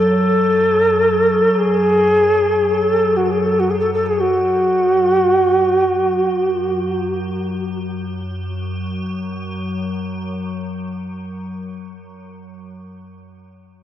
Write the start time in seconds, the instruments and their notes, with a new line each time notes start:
Already playing: ambient pad F#2 F#3
0.00 native american-style wooden flute A4
1.59 native american-style wooden flute G#4
2.82 native american-style wooden flute A4
3.17 native american-style wooden flute F#4
3.31 native american-style wooden flute G#4
3.46 native american-style wooden flute A4
3.59 native american-style wooden flute F#4
3.70 native american-style wooden flute G#4
3.80 native american-style wooden flute A4
3.94 native american-style wooden flute A4
4.06 native american-style wooden flute G#4
4.21 native american-style wooden flute F#4
7.73 ambient pad F#2 F#3